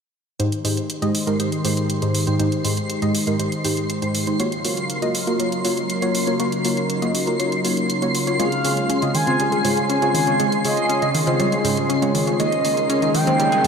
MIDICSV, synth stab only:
0, 0, Header, 1, 2, 480
1, 0, Start_track
1, 0, Key_signature, -4, "major"
1, 0, Tempo, 500000
1, 380, Time_signature, 4, 2, 24, 8
1, 13126, End_track
2, 0, Start_track
2, 0, Title_t, "Synth stab"
2, 0, Program_c, 0, 62
2, 379, Note_on_c, 0, 44, 95
2, 379, Note_on_c, 0, 56, 84
2, 379, Note_on_c, 0, 63, 86
2, 379, Note_on_c, 0, 67, 86
2, 379, Note_on_c, 0, 72, 104
2, 466, Note_off_c, 0, 44, 0
2, 466, Note_off_c, 0, 56, 0
2, 466, Note_off_c, 0, 63, 0
2, 466, Note_off_c, 0, 67, 0
2, 466, Note_off_c, 0, 72, 0
2, 619, Note_on_c, 0, 44, 80
2, 619, Note_on_c, 0, 56, 71
2, 619, Note_on_c, 0, 63, 74
2, 619, Note_on_c, 0, 67, 70
2, 619, Note_on_c, 0, 72, 90
2, 757, Note_off_c, 0, 44, 0
2, 757, Note_off_c, 0, 56, 0
2, 757, Note_off_c, 0, 63, 0
2, 757, Note_off_c, 0, 67, 0
2, 757, Note_off_c, 0, 72, 0
2, 979, Note_on_c, 0, 63, 84
2, 980, Note_on_c, 0, 44, 92
2, 980, Note_on_c, 0, 56, 85
2, 980, Note_on_c, 0, 67, 83
2, 980, Note_on_c, 0, 75, 102
2, 1065, Note_off_c, 0, 44, 0
2, 1065, Note_off_c, 0, 56, 0
2, 1065, Note_off_c, 0, 63, 0
2, 1065, Note_off_c, 0, 67, 0
2, 1065, Note_off_c, 0, 75, 0
2, 1219, Note_on_c, 0, 44, 89
2, 1219, Note_on_c, 0, 63, 83
2, 1219, Note_on_c, 0, 67, 82
2, 1220, Note_on_c, 0, 56, 82
2, 1220, Note_on_c, 0, 70, 99
2, 1311, Note_off_c, 0, 44, 0
2, 1311, Note_off_c, 0, 56, 0
2, 1311, Note_off_c, 0, 63, 0
2, 1311, Note_off_c, 0, 67, 0
2, 1311, Note_off_c, 0, 70, 0
2, 1338, Note_on_c, 0, 67, 67
2, 1339, Note_on_c, 0, 44, 72
2, 1339, Note_on_c, 0, 56, 65
2, 1339, Note_on_c, 0, 63, 65
2, 1339, Note_on_c, 0, 72, 81
2, 1425, Note_off_c, 0, 44, 0
2, 1425, Note_off_c, 0, 56, 0
2, 1425, Note_off_c, 0, 63, 0
2, 1425, Note_off_c, 0, 67, 0
2, 1425, Note_off_c, 0, 72, 0
2, 1578, Note_on_c, 0, 44, 83
2, 1579, Note_on_c, 0, 56, 78
2, 1579, Note_on_c, 0, 63, 77
2, 1579, Note_on_c, 0, 67, 79
2, 1579, Note_on_c, 0, 72, 93
2, 1911, Note_off_c, 0, 44, 0
2, 1911, Note_off_c, 0, 56, 0
2, 1911, Note_off_c, 0, 63, 0
2, 1911, Note_off_c, 0, 67, 0
2, 1912, Note_off_c, 0, 72, 0
2, 1939, Note_on_c, 0, 63, 81
2, 1940, Note_on_c, 0, 44, 87
2, 1940, Note_on_c, 0, 56, 82
2, 1940, Note_on_c, 0, 67, 80
2, 1940, Note_on_c, 0, 72, 97
2, 2151, Note_off_c, 0, 44, 0
2, 2151, Note_off_c, 0, 56, 0
2, 2151, Note_off_c, 0, 63, 0
2, 2151, Note_off_c, 0, 67, 0
2, 2151, Note_off_c, 0, 72, 0
2, 2180, Note_on_c, 0, 44, 89
2, 2180, Note_on_c, 0, 56, 82
2, 2180, Note_on_c, 0, 63, 79
2, 2180, Note_on_c, 0, 67, 80
2, 2180, Note_on_c, 0, 72, 98
2, 2271, Note_off_c, 0, 44, 0
2, 2271, Note_off_c, 0, 56, 0
2, 2271, Note_off_c, 0, 63, 0
2, 2271, Note_off_c, 0, 67, 0
2, 2271, Note_off_c, 0, 72, 0
2, 2298, Note_on_c, 0, 44, 94
2, 2298, Note_on_c, 0, 56, 85
2, 2298, Note_on_c, 0, 63, 83
2, 2298, Note_on_c, 0, 67, 83
2, 2298, Note_on_c, 0, 72, 101
2, 2385, Note_off_c, 0, 44, 0
2, 2385, Note_off_c, 0, 56, 0
2, 2385, Note_off_c, 0, 63, 0
2, 2385, Note_off_c, 0, 67, 0
2, 2385, Note_off_c, 0, 72, 0
2, 2538, Note_on_c, 0, 67, 72
2, 2539, Note_on_c, 0, 44, 76
2, 2539, Note_on_c, 0, 56, 73
2, 2539, Note_on_c, 0, 63, 72
2, 2539, Note_on_c, 0, 72, 87
2, 2677, Note_off_c, 0, 44, 0
2, 2677, Note_off_c, 0, 56, 0
2, 2677, Note_off_c, 0, 63, 0
2, 2677, Note_off_c, 0, 67, 0
2, 2677, Note_off_c, 0, 72, 0
2, 2900, Note_on_c, 0, 44, 94
2, 2900, Note_on_c, 0, 56, 84
2, 2900, Note_on_c, 0, 63, 86
2, 2900, Note_on_c, 0, 67, 87
2, 2900, Note_on_c, 0, 75, 104
2, 2985, Note_off_c, 0, 44, 0
2, 2985, Note_off_c, 0, 56, 0
2, 2985, Note_off_c, 0, 63, 0
2, 2985, Note_off_c, 0, 67, 0
2, 2985, Note_off_c, 0, 75, 0
2, 3140, Note_on_c, 0, 44, 89
2, 3140, Note_on_c, 0, 56, 80
2, 3140, Note_on_c, 0, 63, 82
2, 3140, Note_on_c, 0, 67, 82
2, 3140, Note_on_c, 0, 70, 98
2, 3231, Note_off_c, 0, 44, 0
2, 3231, Note_off_c, 0, 56, 0
2, 3231, Note_off_c, 0, 63, 0
2, 3231, Note_off_c, 0, 67, 0
2, 3231, Note_off_c, 0, 70, 0
2, 3259, Note_on_c, 0, 44, 71
2, 3259, Note_on_c, 0, 56, 66
2, 3259, Note_on_c, 0, 63, 66
2, 3259, Note_on_c, 0, 67, 69
2, 3259, Note_on_c, 0, 72, 79
2, 3345, Note_off_c, 0, 63, 0
2, 3346, Note_off_c, 0, 44, 0
2, 3346, Note_off_c, 0, 56, 0
2, 3346, Note_off_c, 0, 67, 0
2, 3346, Note_off_c, 0, 72, 0
2, 3499, Note_on_c, 0, 63, 78
2, 3499, Note_on_c, 0, 67, 78
2, 3499, Note_on_c, 0, 72, 96
2, 3500, Note_on_c, 0, 44, 83
2, 3500, Note_on_c, 0, 56, 78
2, 3832, Note_off_c, 0, 44, 0
2, 3832, Note_off_c, 0, 56, 0
2, 3832, Note_off_c, 0, 63, 0
2, 3832, Note_off_c, 0, 67, 0
2, 3832, Note_off_c, 0, 72, 0
2, 3860, Note_on_c, 0, 56, 80
2, 3860, Note_on_c, 0, 67, 81
2, 3861, Note_on_c, 0, 44, 91
2, 3861, Note_on_c, 0, 63, 79
2, 3861, Note_on_c, 0, 72, 99
2, 4072, Note_off_c, 0, 44, 0
2, 4072, Note_off_c, 0, 56, 0
2, 4072, Note_off_c, 0, 63, 0
2, 4072, Note_off_c, 0, 67, 0
2, 4072, Note_off_c, 0, 72, 0
2, 4101, Note_on_c, 0, 56, 88
2, 4101, Note_on_c, 0, 63, 81
2, 4101, Note_on_c, 0, 67, 80
2, 4101, Note_on_c, 0, 72, 97
2, 4191, Note_off_c, 0, 56, 0
2, 4191, Note_off_c, 0, 63, 0
2, 4191, Note_off_c, 0, 67, 0
2, 4192, Note_off_c, 0, 72, 0
2, 4219, Note_on_c, 0, 58, 92
2, 4219, Note_on_c, 0, 65, 85
2, 4219, Note_on_c, 0, 66, 86
2, 4219, Note_on_c, 0, 73, 100
2, 4306, Note_off_c, 0, 58, 0
2, 4306, Note_off_c, 0, 65, 0
2, 4306, Note_off_c, 0, 66, 0
2, 4306, Note_off_c, 0, 73, 0
2, 4459, Note_on_c, 0, 58, 78
2, 4459, Note_on_c, 0, 66, 72
2, 4460, Note_on_c, 0, 65, 74
2, 4460, Note_on_c, 0, 73, 86
2, 4597, Note_off_c, 0, 58, 0
2, 4597, Note_off_c, 0, 65, 0
2, 4597, Note_off_c, 0, 66, 0
2, 4597, Note_off_c, 0, 73, 0
2, 4820, Note_on_c, 0, 58, 95
2, 4820, Note_on_c, 0, 66, 87
2, 4821, Note_on_c, 0, 65, 84
2, 4821, Note_on_c, 0, 75, 102
2, 4905, Note_off_c, 0, 58, 0
2, 4905, Note_off_c, 0, 66, 0
2, 4905, Note_off_c, 0, 75, 0
2, 4906, Note_off_c, 0, 65, 0
2, 5060, Note_on_c, 0, 58, 90
2, 5060, Note_on_c, 0, 65, 86
2, 5060, Note_on_c, 0, 66, 83
2, 5060, Note_on_c, 0, 70, 102
2, 5151, Note_off_c, 0, 58, 0
2, 5151, Note_off_c, 0, 65, 0
2, 5151, Note_off_c, 0, 66, 0
2, 5151, Note_off_c, 0, 70, 0
2, 5179, Note_on_c, 0, 58, 74
2, 5179, Note_on_c, 0, 65, 68
2, 5179, Note_on_c, 0, 66, 67
2, 5179, Note_on_c, 0, 73, 80
2, 5265, Note_off_c, 0, 58, 0
2, 5265, Note_off_c, 0, 65, 0
2, 5266, Note_off_c, 0, 66, 0
2, 5266, Note_off_c, 0, 73, 0
2, 5419, Note_on_c, 0, 58, 87
2, 5419, Note_on_c, 0, 65, 78
2, 5419, Note_on_c, 0, 66, 78
2, 5419, Note_on_c, 0, 73, 94
2, 5751, Note_off_c, 0, 58, 0
2, 5751, Note_off_c, 0, 65, 0
2, 5751, Note_off_c, 0, 66, 0
2, 5752, Note_off_c, 0, 73, 0
2, 5779, Note_on_c, 0, 65, 84
2, 5779, Note_on_c, 0, 73, 98
2, 5780, Note_on_c, 0, 58, 90
2, 5780, Note_on_c, 0, 66, 84
2, 5991, Note_off_c, 0, 65, 0
2, 5991, Note_off_c, 0, 66, 0
2, 5991, Note_off_c, 0, 73, 0
2, 5992, Note_off_c, 0, 58, 0
2, 6020, Note_on_c, 0, 58, 91
2, 6020, Note_on_c, 0, 65, 81
2, 6020, Note_on_c, 0, 66, 82
2, 6020, Note_on_c, 0, 73, 96
2, 6111, Note_off_c, 0, 58, 0
2, 6111, Note_off_c, 0, 65, 0
2, 6111, Note_off_c, 0, 66, 0
2, 6111, Note_off_c, 0, 73, 0
2, 6139, Note_on_c, 0, 58, 91
2, 6139, Note_on_c, 0, 65, 86
2, 6140, Note_on_c, 0, 66, 85
2, 6140, Note_on_c, 0, 73, 103
2, 6226, Note_off_c, 0, 58, 0
2, 6226, Note_off_c, 0, 65, 0
2, 6226, Note_off_c, 0, 66, 0
2, 6226, Note_off_c, 0, 73, 0
2, 6379, Note_on_c, 0, 73, 89
2, 6380, Note_on_c, 0, 58, 80
2, 6380, Note_on_c, 0, 65, 72
2, 6380, Note_on_c, 0, 66, 71
2, 6517, Note_off_c, 0, 58, 0
2, 6517, Note_off_c, 0, 65, 0
2, 6517, Note_off_c, 0, 66, 0
2, 6517, Note_off_c, 0, 73, 0
2, 6740, Note_on_c, 0, 58, 92
2, 6740, Note_on_c, 0, 65, 83
2, 6740, Note_on_c, 0, 66, 85
2, 6740, Note_on_c, 0, 75, 100
2, 6825, Note_off_c, 0, 58, 0
2, 6825, Note_off_c, 0, 65, 0
2, 6825, Note_off_c, 0, 66, 0
2, 6825, Note_off_c, 0, 75, 0
2, 6980, Note_on_c, 0, 58, 90
2, 6980, Note_on_c, 0, 65, 82
2, 6980, Note_on_c, 0, 66, 83
2, 6980, Note_on_c, 0, 70, 100
2, 7071, Note_off_c, 0, 58, 0
2, 7071, Note_off_c, 0, 65, 0
2, 7071, Note_off_c, 0, 66, 0
2, 7071, Note_off_c, 0, 70, 0
2, 7099, Note_on_c, 0, 58, 73
2, 7099, Note_on_c, 0, 65, 66
2, 7099, Note_on_c, 0, 66, 68
2, 7099, Note_on_c, 0, 73, 80
2, 7186, Note_off_c, 0, 58, 0
2, 7186, Note_off_c, 0, 65, 0
2, 7186, Note_off_c, 0, 66, 0
2, 7186, Note_off_c, 0, 73, 0
2, 7339, Note_on_c, 0, 58, 84
2, 7339, Note_on_c, 0, 66, 76
2, 7339, Note_on_c, 0, 73, 94
2, 7340, Note_on_c, 0, 65, 76
2, 7672, Note_off_c, 0, 58, 0
2, 7672, Note_off_c, 0, 65, 0
2, 7672, Note_off_c, 0, 66, 0
2, 7672, Note_off_c, 0, 73, 0
2, 7701, Note_on_c, 0, 58, 90
2, 7701, Note_on_c, 0, 65, 82
2, 7701, Note_on_c, 0, 66, 82
2, 7701, Note_on_c, 0, 73, 100
2, 7912, Note_off_c, 0, 58, 0
2, 7912, Note_off_c, 0, 65, 0
2, 7912, Note_off_c, 0, 66, 0
2, 7912, Note_off_c, 0, 73, 0
2, 7940, Note_on_c, 0, 58, 88
2, 7940, Note_on_c, 0, 73, 100
2, 7941, Note_on_c, 0, 65, 81
2, 7941, Note_on_c, 0, 66, 81
2, 8031, Note_off_c, 0, 58, 0
2, 8031, Note_off_c, 0, 65, 0
2, 8031, Note_off_c, 0, 73, 0
2, 8032, Note_off_c, 0, 66, 0
2, 8059, Note_on_c, 0, 49, 91
2, 8059, Note_on_c, 0, 60, 83
2, 8059, Note_on_c, 0, 65, 84
2, 8059, Note_on_c, 0, 68, 86
2, 8059, Note_on_c, 0, 73, 103
2, 8146, Note_off_c, 0, 49, 0
2, 8146, Note_off_c, 0, 60, 0
2, 8146, Note_off_c, 0, 65, 0
2, 8146, Note_off_c, 0, 68, 0
2, 8146, Note_off_c, 0, 73, 0
2, 8300, Note_on_c, 0, 49, 77
2, 8300, Note_on_c, 0, 60, 72
2, 8300, Note_on_c, 0, 65, 73
2, 8300, Note_on_c, 0, 68, 72
2, 8300, Note_on_c, 0, 73, 85
2, 8437, Note_off_c, 0, 60, 0
2, 8437, Note_off_c, 0, 73, 0
2, 8438, Note_off_c, 0, 49, 0
2, 8438, Note_off_c, 0, 65, 0
2, 8438, Note_off_c, 0, 68, 0
2, 8662, Note_on_c, 0, 49, 93
2, 8662, Note_on_c, 0, 60, 86
2, 8662, Note_on_c, 0, 65, 88
2, 8662, Note_on_c, 0, 68, 88
2, 8662, Note_on_c, 0, 75, 103
2, 8746, Note_off_c, 0, 49, 0
2, 8746, Note_off_c, 0, 60, 0
2, 8746, Note_off_c, 0, 65, 0
2, 8746, Note_off_c, 0, 68, 0
2, 8746, Note_off_c, 0, 75, 0
2, 8902, Note_on_c, 0, 49, 91
2, 8902, Note_on_c, 0, 60, 86
2, 8902, Note_on_c, 0, 65, 82
2, 8902, Note_on_c, 0, 68, 81
2, 8902, Note_on_c, 0, 72, 102
2, 8992, Note_off_c, 0, 49, 0
2, 8992, Note_off_c, 0, 60, 0
2, 8992, Note_off_c, 0, 65, 0
2, 8992, Note_off_c, 0, 68, 0
2, 8992, Note_off_c, 0, 72, 0
2, 9020, Note_on_c, 0, 49, 74
2, 9020, Note_on_c, 0, 60, 67
2, 9020, Note_on_c, 0, 65, 66
2, 9020, Note_on_c, 0, 68, 65
2, 9020, Note_on_c, 0, 73, 79
2, 9106, Note_off_c, 0, 49, 0
2, 9106, Note_off_c, 0, 60, 0
2, 9106, Note_off_c, 0, 65, 0
2, 9106, Note_off_c, 0, 68, 0
2, 9106, Note_off_c, 0, 73, 0
2, 9260, Note_on_c, 0, 49, 86
2, 9260, Note_on_c, 0, 65, 78
2, 9260, Note_on_c, 0, 72, 79
2, 9260, Note_on_c, 0, 73, 94
2, 9261, Note_on_c, 0, 68, 76
2, 9592, Note_off_c, 0, 49, 0
2, 9592, Note_off_c, 0, 65, 0
2, 9592, Note_off_c, 0, 68, 0
2, 9592, Note_off_c, 0, 72, 0
2, 9592, Note_off_c, 0, 73, 0
2, 9622, Note_on_c, 0, 49, 92
2, 9622, Note_on_c, 0, 60, 81
2, 9622, Note_on_c, 0, 65, 85
2, 9622, Note_on_c, 0, 68, 82
2, 9622, Note_on_c, 0, 73, 100
2, 9832, Note_off_c, 0, 49, 0
2, 9832, Note_off_c, 0, 60, 0
2, 9832, Note_off_c, 0, 65, 0
2, 9832, Note_off_c, 0, 68, 0
2, 9832, Note_off_c, 0, 73, 0
2, 9861, Note_on_c, 0, 49, 91
2, 9861, Note_on_c, 0, 60, 80
2, 9861, Note_on_c, 0, 65, 81
2, 9861, Note_on_c, 0, 68, 82
2, 9861, Note_on_c, 0, 73, 96
2, 9951, Note_off_c, 0, 65, 0
2, 9952, Note_off_c, 0, 49, 0
2, 9952, Note_off_c, 0, 60, 0
2, 9952, Note_off_c, 0, 68, 0
2, 9952, Note_off_c, 0, 73, 0
2, 9980, Note_on_c, 0, 49, 94
2, 9980, Note_on_c, 0, 60, 85
2, 9980, Note_on_c, 0, 65, 86
2, 9980, Note_on_c, 0, 68, 86
2, 9980, Note_on_c, 0, 73, 103
2, 10066, Note_off_c, 0, 49, 0
2, 10066, Note_off_c, 0, 60, 0
2, 10066, Note_off_c, 0, 65, 0
2, 10066, Note_off_c, 0, 68, 0
2, 10066, Note_off_c, 0, 73, 0
2, 10220, Note_on_c, 0, 49, 79
2, 10220, Note_on_c, 0, 65, 73
2, 10220, Note_on_c, 0, 68, 73
2, 10220, Note_on_c, 0, 73, 90
2, 10221, Note_on_c, 0, 60, 75
2, 10357, Note_off_c, 0, 49, 0
2, 10357, Note_off_c, 0, 65, 0
2, 10358, Note_off_c, 0, 60, 0
2, 10358, Note_off_c, 0, 68, 0
2, 10358, Note_off_c, 0, 73, 0
2, 10581, Note_on_c, 0, 49, 91
2, 10581, Note_on_c, 0, 60, 84
2, 10581, Note_on_c, 0, 65, 84
2, 10581, Note_on_c, 0, 68, 85
2, 10581, Note_on_c, 0, 75, 103
2, 10666, Note_off_c, 0, 49, 0
2, 10666, Note_off_c, 0, 60, 0
2, 10666, Note_off_c, 0, 65, 0
2, 10666, Note_off_c, 0, 68, 0
2, 10666, Note_off_c, 0, 75, 0
2, 10820, Note_on_c, 0, 49, 94
2, 10820, Note_on_c, 0, 60, 83
2, 10820, Note_on_c, 0, 65, 82
2, 10820, Note_on_c, 0, 68, 84
2, 10820, Note_on_c, 0, 72, 101
2, 10911, Note_off_c, 0, 49, 0
2, 10911, Note_off_c, 0, 60, 0
2, 10911, Note_off_c, 0, 65, 0
2, 10911, Note_off_c, 0, 68, 0
2, 10911, Note_off_c, 0, 72, 0
2, 10939, Note_on_c, 0, 60, 68
2, 10939, Note_on_c, 0, 68, 68
2, 10940, Note_on_c, 0, 49, 72
2, 10940, Note_on_c, 0, 65, 69
2, 10940, Note_on_c, 0, 73, 84
2, 11026, Note_off_c, 0, 49, 0
2, 11026, Note_off_c, 0, 60, 0
2, 11026, Note_off_c, 0, 65, 0
2, 11026, Note_off_c, 0, 68, 0
2, 11026, Note_off_c, 0, 73, 0
2, 11179, Note_on_c, 0, 49, 87
2, 11180, Note_on_c, 0, 65, 82
2, 11180, Note_on_c, 0, 68, 77
2, 11180, Note_on_c, 0, 72, 80
2, 11180, Note_on_c, 0, 73, 93
2, 11512, Note_off_c, 0, 49, 0
2, 11512, Note_off_c, 0, 65, 0
2, 11512, Note_off_c, 0, 68, 0
2, 11512, Note_off_c, 0, 72, 0
2, 11512, Note_off_c, 0, 73, 0
2, 11541, Note_on_c, 0, 49, 88
2, 11541, Note_on_c, 0, 60, 83
2, 11541, Note_on_c, 0, 65, 82
2, 11541, Note_on_c, 0, 68, 81
2, 11541, Note_on_c, 0, 73, 101
2, 11752, Note_off_c, 0, 49, 0
2, 11752, Note_off_c, 0, 60, 0
2, 11752, Note_off_c, 0, 65, 0
2, 11752, Note_off_c, 0, 68, 0
2, 11752, Note_off_c, 0, 73, 0
2, 11781, Note_on_c, 0, 60, 90
2, 11781, Note_on_c, 0, 65, 83
2, 11781, Note_on_c, 0, 68, 83
2, 11781, Note_on_c, 0, 73, 97
2, 11871, Note_off_c, 0, 60, 0
2, 11871, Note_off_c, 0, 65, 0
2, 11871, Note_off_c, 0, 68, 0
2, 11871, Note_off_c, 0, 73, 0
2, 11899, Note_on_c, 0, 51, 94
2, 11899, Note_on_c, 0, 58, 86
2, 11899, Note_on_c, 0, 63, 86
2, 11899, Note_on_c, 0, 68, 89
2, 11900, Note_on_c, 0, 73, 104
2, 11986, Note_off_c, 0, 51, 0
2, 11986, Note_off_c, 0, 58, 0
2, 11986, Note_off_c, 0, 63, 0
2, 11986, Note_off_c, 0, 68, 0
2, 11986, Note_off_c, 0, 73, 0
2, 12140, Note_on_c, 0, 51, 80
2, 12140, Note_on_c, 0, 58, 73
2, 12140, Note_on_c, 0, 63, 75
2, 12140, Note_on_c, 0, 68, 74
2, 12140, Note_on_c, 0, 73, 87
2, 12277, Note_off_c, 0, 51, 0
2, 12277, Note_off_c, 0, 58, 0
2, 12277, Note_off_c, 0, 63, 0
2, 12277, Note_off_c, 0, 68, 0
2, 12277, Note_off_c, 0, 73, 0
2, 12500, Note_on_c, 0, 51, 93
2, 12500, Note_on_c, 0, 58, 87
2, 12500, Note_on_c, 0, 63, 85
2, 12500, Note_on_c, 0, 68, 86
2, 12500, Note_on_c, 0, 75, 100
2, 12585, Note_off_c, 0, 51, 0
2, 12585, Note_off_c, 0, 58, 0
2, 12585, Note_off_c, 0, 63, 0
2, 12585, Note_off_c, 0, 68, 0
2, 12585, Note_off_c, 0, 75, 0
2, 12739, Note_on_c, 0, 58, 83
2, 12739, Note_on_c, 0, 63, 85
2, 12740, Note_on_c, 0, 51, 90
2, 12740, Note_on_c, 0, 68, 84
2, 12740, Note_on_c, 0, 72, 100
2, 12831, Note_off_c, 0, 51, 0
2, 12831, Note_off_c, 0, 58, 0
2, 12831, Note_off_c, 0, 63, 0
2, 12831, Note_off_c, 0, 68, 0
2, 12831, Note_off_c, 0, 72, 0
2, 12859, Note_on_c, 0, 51, 74
2, 12859, Note_on_c, 0, 58, 68
2, 12859, Note_on_c, 0, 63, 68
2, 12859, Note_on_c, 0, 68, 67
2, 12859, Note_on_c, 0, 73, 81
2, 12946, Note_off_c, 0, 51, 0
2, 12946, Note_off_c, 0, 58, 0
2, 12946, Note_off_c, 0, 63, 0
2, 12946, Note_off_c, 0, 68, 0
2, 12946, Note_off_c, 0, 73, 0
2, 13126, End_track
0, 0, End_of_file